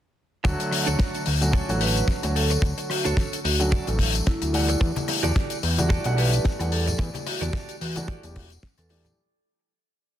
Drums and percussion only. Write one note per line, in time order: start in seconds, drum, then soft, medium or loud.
0.45 kick loud
0.45 closed hi-hat medium
0.45 tambourine medium
0.60 closed hi-hat medium
0.60 tambourine soft
0.71 cross-stick medium
0.71 open hi-hat loud
0.87 closed hi-hat medium
0.87 tambourine medium
0.99 kick loud
0.99 snare loud
0.99 closed hi-hat medium
1.15 closed hi-hat medium
1.15 tambourine soft
1.26 open hi-hat loud
1.42 closed hi-hat medium
1.42 tambourine medium
1.53 kick loud
1.53 closed hi-hat medium
1.53 tambourine medium
1.69 closed hi-hat soft
1.69 tambourine soft
1.81 open hi-hat loud
1.96 closed hi-hat medium
1.96 tambourine medium
2.08 kick loud
2.08 snare loud
2.08 closed hi-hat medium
2.08 tambourine medium
2.23 cross-stick medium
2.23 closed hi-hat medium
2.23 tambourine soft
2.36 open hi-hat loud
2.51 closed hi-hat medium
2.51 tambourine medium
2.62 kick loud
2.62 closed hi-hat medium
2.78 closed hi-hat medium
2.78 tambourine soft
2.90 cross-stick medium
2.90 open hi-hat loud
3.05 closed hi-hat medium
3.05 tambourine medium
3.17 kick loud
3.17 snare loud
3.17 closed hi-hat medium
3.17 tambourine soft
3.33 closed hi-hat medium
3.33 tambourine soft
3.45 open hi-hat loud
3.60 closed hi-hat medium
3.60 tambourine medium
3.72 kick loud
3.72 closed hi-hat medium
3.87 closed hi-hat medium
3.87 tambourine soft
3.99 kick medium
3.99 open hi-hat loud
4.15 closed hi-hat medium
4.15 tambourine medium
4.27 kick loud
4.27 snare loud
4.27 closed hi-hat medium
4.27 tambourine medium
4.42 cross-stick medium
4.42 closed hi-hat medium
4.42 tambourine soft
4.54 open hi-hat loud
4.69 closed hi-hat medium
4.69 tambourine medium
4.81 kick loud
4.81 closed hi-hat medium
4.81 tambourine medium
4.96 closed hi-hat medium
4.96 tambourine soft
4.96 high conga loud
5.08 cross-stick medium
5.08 open hi-hat loud
5.08 high bongo medium
5.23 closed hi-hat medium
5.23 tambourine medium
5.23 high conga medium
5.36 kick loud
5.36 snare loud
5.36 closed hi-hat medium
5.50 closed hi-hat medium
5.50 tambourine soft
5.63 open hi-hat medium
5.63 high bongo medium
5.78 closed hi-hat medium
5.78 tambourine medium
5.78 high conga loud
5.90 kick loud
5.90 closed hi-hat medium
5.90 tambourine medium
6.04 closed hi-hat medium
6.04 tambourine soft
6.04 high bongo medium
6.18 open hi-hat loud
6.33 closed hi-hat medium
6.33 tambourine medium
6.45 kick loud
6.45 snare loud
6.45 closed hi-hat medium
6.59 cross-stick medium
6.59 closed hi-hat soft
6.59 tambourine soft
6.59 high bongo soft
6.72 open hi-hat medium
6.87 closed hi-hat medium
6.87 tambourine medium
6.87 low conga medium
6.99 kick loud
6.99 closed hi-hat medium
6.99 tambourine medium
6.99 high bongo medium
7.14 closed hi-hat medium
7.14 tambourine soft
7.14 high conga medium
7.27 cross-stick medium
7.27 open hi-hat loud
7.41 closed hi-hat soft
7.41 tambourine medium
7.41 high conga medium
7.53 kick loud
7.53 snare loud
7.53 closed hi-hat medium
7.53 tambourine medium
7.53 high bongo soft
7.69 closed hi-hat soft
7.69 tambourine soft
7.81 open hi-hat medium
7.96 closed hi-hat medium
7.96 tambourine medium
7.96 high bongo medium
7.96 high conga medium
8.08 kick loud
8.08 closed hi-hat medium
8.23 closed hi-hat medium
8.23 tambourine soft
8.36 kick medium
8.36 open hi-hat loud
8.50 closed hi-hat medium
8.50 tambourine medium
8.50 high bongo medium
8.63 kick loud
8.63 snare loud
8.63 closed hi-hat medium
8.63 tambourine medium
8.78 cross-stick medium
8.78 closed hi-hat medium
8.78 tambourine soft
8.89 open hi-hat medium
8.89 high bongo medium
9.05 closed hi-hat medium
9.05 tambourine medium
9.05 low conga medium